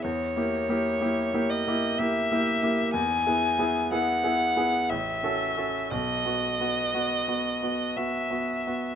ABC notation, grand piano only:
X:1
M:3/4
L:1/8
Q:1/4=61
K:Bmix
V:1 name="Grand piano"
(3E,, [_B,E=G] [B,EG] (3[B,EG] [B,EG] [B,EG] (3[B,EG] [B,EG] [B,EG] | (3E,, [B,EG] [B,EG] (3[B,EG] [B,EG] [B,EG] (3A,,, [CFA] [CFA] | (3B,,, [B,F] [B,F] (3[B,F] [B,F] [B,F] (3[B,F] [B,F] [B,F] |]